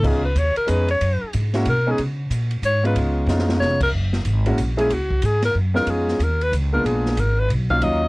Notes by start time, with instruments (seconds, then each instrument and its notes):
0.03 upright bass C#2, grand piano G#3 B3 C#4 D#4 F4, alto saxophone G#4, kick, crash
0.25 alto saxophone B4
0.35 upright bass D#2, alto saxophone C#5, hi-hat pedal, ride
0.56 alto saxophone A#4, muted upright bass stroke, ride
0.67 upright bass F2, grand piano G#3 B3 C#4 D#4 G#4, alto saxophone B4, hi-hat pedal, ride
0.88 alto saxophone C#5, ride
1.01 upright bass F#2, ride
1.23 muted upright bass stroke
1.33 upright bass G#2, hi-hat pedal, ride
1.53 grand piano G#3 A#3 C#4 E4 F#4, snare, ride
1.65 upright bass B2, alto saxophone A#4, ride
1.87 grand piano G#3 B3 C#4 D#4 G#4
1.91 alto saxophone G#4
1.98 upright bass C#3, ride
2.30 upright bass A#2, hi-hat pedal, ride
2.51 ride
2.62 upright bass G#2, alto saxophone C#5, hi-hat pedal, ride
2.83 grand piano G#3 B3 C#4 D#4 F4, alto saxophone B4, ride
2.95 upright bass C#2, ride
3.26 upright bass F2, grand piano G#3 B3 C#4 D#4 F4, snare, hi-hat pedal
3.39 snare
3.49 snare
3.59 upright bass F1, alto saxophone C#5, snare
3.81 alto saxophone A#4, kick, crash
3.93 upright bass F#1
4.13 snare
4.25 upright bass G#1, hi-hat pedal, ride
4.46 grand piano G#3 A#3 C#4 E4 F#4, ride
4.58 upright bass A#1, hi-hat pedal, ride
4.77 grand piano G#3 A#3 C#4 E4 G#4, alto saxophone G#4, ride
4.90 upright bass C#2, alto saxophone F#4, ride
5.10 kick
5.22 upright bass G#2, alto saxophone G#4, hi-hat pedal, ride
5.42 alto saxophone A#4, snare, ride
5.55 upright bass F#2
5.74 grand piano G#3 B3 C#4 D#4 F4, alto saxophone A#4, snare
5.86 upright bass F2, alto saxophone G#4, ride
6.08 snare
6.19 upright bass D#2, alto saxophone A#4, hi-hat pedal, ride
6.41 alto saxophone B4, ride
6.52 upright bass C#2, hi-hat pedal, ride
6.72 grand piano G#3 A#3 B3 D4 F4, alto saxophone A#4
6.84 upright bass A#1, alto saxophone G#4, ride
7.06 snare
7.17 upright bass G#1, alto saxophone A#4, hi-hat pedal, ride
7.39 alto saxophone B4
7.49 upright bass B1, ride
7.70 grand piano F#3 A#3 C#4 D#4 F4, alto saxophone F5, kick
7.81 upright bass D#2, grand piano F#3 A#3 C#4 D#4 F4, alto saxophone D#5, ride